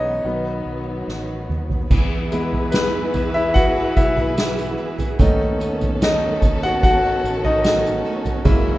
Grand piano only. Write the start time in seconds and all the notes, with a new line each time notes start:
Already playing: E3 G#3 B3 C#4 D#4 B4 C#5 D#5
0.25 D#3 F#3 B3
2.32 G#3 B3 E4
2.71 B3 B4
3.34 E4 E5
3.54 F#4 F#5
3.97 E4 E5
5.19 A3 C#4 D#4
6.03 D#4 D#5
6.63 F#4 F#5
6.83 F#4 F#5
7.45 D#4 D#5
7.62 D#4 D#5
8.44 G#3 A#3 E4